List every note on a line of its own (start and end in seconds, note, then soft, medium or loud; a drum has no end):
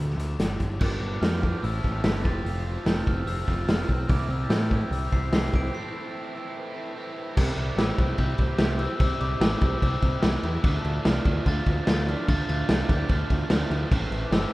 0.00 0.15 D2 medium
0.00 0.37 D3 medium
0.00 0.19 F3 medium
0.00 0.17 A3 medium
0.00 0.16 D4 medium
0.00 0.35 E6 medium
0.10 snare soft
0.17 0.35 D2 medium
0.17 0.38 F3 soft
0.17 0.38 A3 medium
0.17 0.37 D4 medium
0.17 closed hi-hat medium
0.37 0.56 G1 medium
0.37 0.77 G2 medium
0.37 0.79 D3 medium
0.37 0.79 G3 medium
0.37 0.79 C4 medium
0.37 0.80 D4 medium
0.37 snare loud
0.37 closed hi-hat medium
0.60 0.77 G1 medium
0.60 kick medium
0.60 closed hi-hat soft
0.79 0.97 G1 medium
0.79 1.61 G2 medium
0.79 1.61 D3 medium
0.79 1.41 F3 medium
0.79 1.62 G3 medium
0.79 1.62 B3 medium
0.79 1.63 D4 medium
0.79 1.41 G4 medium
0.79 kick loud
0.79 crash loud
1.00 1.16 G1 medium
1.00 1.22 D6 medium
1.21 1.53 F2 medium
1.21 1.60 F6 medium
1.21 snare loud
1.21 open hi-hat medium
1.42 1.62 F3 medium
1.42 1.62 B3 medium
1.42 1.62 D4 medium
1.42 1.61 G4 medium
1.42 kick medium
1.62 1.79 A1 medium
1.62 2.23 A2 medium
1.62 2.23 E3 medium
1.62 2.24 A3 medium
1.62 2.26 C4 medium
1.62 2.27 E4 medium
1.62 2.24 A4 medium
1.62 1.84 E6 medium
1.62 open hi-hat soft
1.83 2.00 A1 medium
1.83 2.03 B6 medium
1.83 kick medium
1.83 snare soft
2.04 2.25 G1 medium
2.04 2.23 B6 medium
2.04 snare loud
2.04 open hi-hat medium
2.24 2.41 F1 medium
2.24 3.24 F3 medium
2.24 3.26 A3 medium
2.24 3.27 C4 medium
2.24 3.28 F4 medium
2.24 2.86 A4 loud
2.24 2.88 A6 medium
2.24 kick medium
2.45 2.77 F1 medium
2.45 open hi-hat medium
2.85 3.02 F1 medium
2.85 3.46 F3 medium
2.85 3.47 C4 medium
2.85 3.46 F4 medium
2.85 3.45 A4 medium
2.85 3.08 G6 medium
2.85 snare loud
2.85 open hi-hat medium
3.07 3.23 F1 medium
3.07 3.26 F6 medium
3.07 kick medium
3.25 3.42 F1 medium
3.25 3.46 F3 medium
3.25 3.46 A3 medium
3.25 3.46 C4 medium
3.25 3.44 F4 medium
3.25 3.70 E6 medium
3.25 open hi-hat medium
3.46 3.64 F1 medium
3.46 3.88 F3 medium
3.46 3.88 A3 medium
3.46 4.09 C4 medium
3.46 3.87 F4 medium
3.46 3.87 A4 medium
3.46 kick medium
3.46 snare soft
3.68 3.84 F1 medium
3.68 3.98 F6 medium
3.68 snare loud
3.68 open hi-hat medium
3.89 4.05 B1 medium
3.89 kick medium
4.07 4.25 C2 medium
4.07 5.10 C3 medium
4.07 5.13 E3 loud
4.07 5.11 G3 medium
4.07 5.11 C4 medium
4.07 5.72 G4 medium
4.07 4.69 G4 loud
4.07 7.34 C5 medium
4.07 5.72 E5 medium
4.07 5.72 C6 medium
4.07 kick loud
4.07 open hi-hat medium
4.11 5.10 E4 medium
4.29 4.45 C2 medium
4.29 4.44 E6 medium
4.44 4.51 A6 medium
4.50 4.82 A2 medium
4.50 4.93 G6 medium
4.50 snare loud
4.50 open hi-hat soft
4.70 5.32 G3 medium
4.70 5.33 C4 medium
4.70 5.34 E4 medium
4.70 5.31 G4 medium
4.70 kick medium
4.91 5.07 C2 medium
4.91 5.11 E6 medium
4.91 open hi-hat soft
5.10 5.28 C2 medium
5.10 5.30 C3 medium
5.10 5.31 E3 medium
5.10 5.32 G3 medium
5.10 5.34 C4 medium
5.10 5.34 E4 medium
5.10 5.33 C7 medium
5.10 kick medium
5.31 5.48 C2 medium
5.31 5.72 C3 medium
5.31 5.73 E3 medium
5.31 5.73 G3 medium
5.31 5.75 C4 medium
5.31 5.76 E4 medium
5.31 5.74 G4 medium
5.31 5.53 C7 loud
5.31 snare loud
5.31 open hi-hat medium
5.53 5.69 C2 medium
5.53 5.75 D7 loud
5.53 kick medium
5.72 6.74 A2 medium
5.72 6.75 E3 medium
5.72 6.75 A3 medium
5.72 6.74 C4 loud
5.72 7.36 A4 medium
5.72 6.33 A4 loud
5.72 7.37 B4 medium
5.72 7.35 E5 medium
5.72 6.93 C7 loud
5.77 6.73 E4 loud
6.35 6.94 C4 medium
6.35 6.95 E4 medium
6.35 6.95 A4 medium
6.74 6.93 A2 medium
6.74 6.94 E3 medium
6.74 6.95 A3 medium
6.74 6.95 C4 medium
6.74 6.94 E4 medium
6.94 7.34 A2 medium
6.94 7.35 E3 medium
6.94 7.36 A3 medium
6.94 7.36 C4 medium
6.94 7.36 A4 medium
6.98 7.36 E4 medium
7.35 7.51 C2 loud
7.35 7.76 C3 medium
7.35 7.77 E3 loud
7.35 7.77 G3 medium
7.35 7.78 C4 loud
7.35 7.78 E4 loud
7.35 7.78 G4 loud
7.35 10.61 G4 medium
7.35 10.60 C5 medium
7.35 10.60 E5 medium
7.35 13.86 C6 medium
7.35 kick loud
7.35 crash loud
7.35 crash medium
7.56 7.70 C2 medium
7.56 crash medium
7.77 7.91 A1 medium
7.77 7.96 C3 medium
7.77 7.97 E3 loud
7.77 7.98 G3 loud
7.77 7.98 C4 loud
7.77 7.98 E4 loud
7.77 7.98 G4 medium
7.77 8.16 C5 medium
7.77 8.20 E6 medium
7.77 snare loud
7.77 crash medium
7.97 8.12 C2 medium
7.97 8.16 C3 medium
7.97 8.17 E3 medium
7.97 8.17 G3 medium
7.97 8.18 C4 medium
7.97 8.18 E4 medium
7.97 8.18 G4 loud
7.97 kick loud
7.97 crash medium
8.17 8.32 C2 medium
8.17 8.56 C3 medium
8.17 8.57 E3 medium
8.17 8.57 G3 medium
8.17 8.58 C4 medium
8.17 8.58 E4 loud
8.17 8.58 G4 medium
8.17 8.58 E5 medium
8.17 8.57 G6 loud
8.17 kick medium
8.17 crash medium
8.38 8.52 C2 medium
8.38 kick medium
8.38 crash medium
8.57 8.86 C2 medium
8.57 8.77 C3 medium
8.57 8.77 E3 medium
8.57 8.78 G3 medium
8.57 8.79 C4 medium
8.57 8.79 E4 medium
8.57 8.80 G4 medium
8.57 8.79 E5 medium
8.57 8.80 G6 loud
8.57 snare loud
8.57 crash medium
8.78 8.97 C3 medium
8.78 8.99 E3 medium
8.78 8.99 G3 medium
8.78 9.01 C4 medium
8.78 9.00 E4 medium
8.78 9.01 G4 loud
8.78 8.90 C5 medium
8.78 8.89 E6 loud
8.78 crash medium
8.99 9.14 C2 loud
8.99 9.38 C3 medium
8.99 9.38 E3 loud
8.99 9.39 G3 medium
8.99 9.41 C4 loud
8.99 9.40 E4 medium
8.99 9.41 G4 loud
8.99 9.20 C5 medium
8.99 9.19 E6 loud
8.99 kick loud
8.99 crash loud
9.20 9.34 C2 medium
9.20 9.59 G4 medium
9.20 9.63 D6 medium
9.20 crash medium
9.39 9.54 A1 medium
9.39 9.58 C3 medium
9.39 9.59 E3 medium
9.39 9.60 G3 medium
9.39 9.61 C4 loud
9.39 9.61 E4 loud
9.39 9.62 G4 medium
9.39 snare loud
9.39 crash medium
9.60 9.75 C2 medium
9.60 9.78 C3 medium
9.60 9.79 E3 medium
9.60 9.80 G3 medium
9.60 9.81 C4 medium
9.60 9.81 E4 medium
9.60 9.82 G4 medium
9.60 9.75 C5 medium
9.60 9.76 E6 medium
9.60 kick medium
9.60 crash medium
9.74 9.82 B4 soft
9.74 9.81 D6 medium
9.80 9.96 C2 medium
9.80 10.20 C3 medium
9.80 10.20 E3 medium
9.80 10.21 G3 medium
9.80 10.22 C4 loud
9.80 10.22 E4 loud
9.80 10.22 G4 loud
9.80 10.40 C5 medium
9.80 10.40 E6 medium
9.80 kick medium
9.80 crash medium
10.02 10.16 C2 medium
10.02 kick medium
10.02 crash medium
10.21 10.37 C2 medium
10.21 10.40 C3 medium
10.21 10.41 E3 medium
10.21 10.42 G3 medium
10.21 10.44 C4 medium
10.21 10.43 E4 loud
10.21 10.43 G4 medium
10.21 snare loud
10.21 crash medium
10.42 10.57 E2 medium
10.42 10.62 C3 medium
10.42 10.61 E3 medium
10.42 10.62 G3 medium
10.42 10.63 C4 medium
10.42 10.63 E4 medium
10.42 10.63 G4 medium
10.42 crash medium
10.61 10.77 D2 medium
10.61 11.02 D3 loud
10.61 11.04 F3 medium
10.61 11.03 A3 loud
10.61 11.04 D4 loud
10.61 11.04 F4 loud
10.61 14.53 A4 medium
10.61 13.87 D5 medium
10.61 13.87 F5 medium
10.61 kick loud
10.61 crash medium
10.84 10.98 D2 medium
10.84 crash medium
11.03 11.18 C2 medium
11.03 11.24 D3 medium
11.03 11.25 F3 medium
11.03 11.25 A3 medium
11.03 11.25 D4 medium
11.03 11.26 F4 loud
11.03 snare loud
11.03 crash medium
11.07 11.44 D5 medium
11.07 11.48 F6 medium
11.24 11.39 D2 loud
11.24 11.42 D3 medium
11.24 11.45 F3 medium
11.24 11.44 A3 medium
11.24 11.44 D4 medium
11.24 11.45 F4 medium
11.24 kick loud
11.24 crash medium
11.44 11.59 D2 loud
11.44 11.84 D3 medium
11.44 11.85 F3 medium
11.44 11.85 A3 loud
11.44 11.85 D4 medium
11.44 11.85 F4 loud
11.44 kick medium
11.44 crash medium
11.48 11.85 F5 medium
11.48 11.85 A6 loud
11.66 11.80 D2 loud
11.66 kick medium
11.66 crash medium
11.85 12.14 D2 medium
11.85 12.04 D3 medium
11.85 12.05 F3 medium
11.85 12.06 A3 medium
11.85 12.06 D4 medium
11.85 12.06 F4 medium
11.85 12.06 F5 medium
11.85 snare loud
11.85 crash medium
11.90 12.09 A6 loud
12.06 12.25 D3 medium
12.06 12.26 F3 medium
12.06 12.27 A3 medium
12.06 12.26 D4 medium
12.06 12.27 F4 loud
12.06 12.26 D5 medium
12.06 12.29 F6 medium
12.06 crash medium
12.26 12.42 D2 loud
12.26 12.66 D3 loud
12.26 12.68 F3 medium
12.26 12.68 A3 medium
12.26 12.67 D4 loud
12.26 12.68 F4 loud
12.26 12.46 F5 medium
12.26 12.47 A6 loud
12.26 kick loud
12.26 crash medium
12.49 12.62 D2 medium
12.49 12.86 F5 medium
12.49 12.90 A6 loud
12.49 crash medium
12.67 12.82 C2 medium
12.67 12.86 D3 medium
12.67 12.87 F3 medium
12.67 12.88 A3 medium
12.67 12.87 D4 loud
12.67 12.88 F4 medium
12.67 snare loud
12.67 crash medium
12.87 13.02 D2 medium
12.87 13.06 D3 medium
12.87 13.08 F3 medium
12.87 13.08 A3 medium
12.87 13.08 D4 medium
12.87 13.09 F4 medium
12.87 13.08 E5 medium
12.87 kick loud
12.87 crash medium
12.92 13.11 G6 medium
13.07 13.23 D2 medium
13.07 13.47 D3 medium
13.07 13.49 F3 medium
13.07 13.49 A3 medium
13.07 13.49 D4 medium
13.07 13.49 F4 medium
13.07 13.66 D5 medium
13.07 13.67 F6 medium
13.07 kick medium
13.07 crash medium
13.30 13.43 D2 medium
13.30 kick medium
13.30 crash medium
13.48 13.64 D2 medium
13.48 13.67 D3 medium
13.48 13.69 F3 medium
13.48 13.69 A3 medium
13.48 13.69 D4 medium
13.48 13.69 F4 loud
13.48 snare loud
13.48 crash medium
13.68 13.84 D2 medium
13.68 13.88 D3 medium
13.68 13.89 F3 medium
13.68 13.90 A3 medium
13.68 13.89 D4 medium
13.68 13.89 F4 medium
13.68 crash medium
13.89 14.04 A1 loud
13.89 14.28 A2 medium
13.89 14.30 E3 loud
13.89 14.30 A3 loud
13.89 14.53 C4 medium
13.89 14.30 C4 medium
13.89 14.31 E4 loud
13.89 14.53 B5 medium
13.89 kick loud
13.89 crash medium
14.11 14.24 A1 medium
14.11 crash medium
14.24 14.31 B4 medium
14.24 14.32 D6 medium
14.29 14.45 G1 medium
14.29 14.50 A2 medium
14.29 14.50 E3 loud
14.29 14.51 A3 medium
14.29 14.51 C4 medium
14.29 14.52 E4 medium
14.29 snare loud
14.29 crash medium
14.33 14.53 E6 medium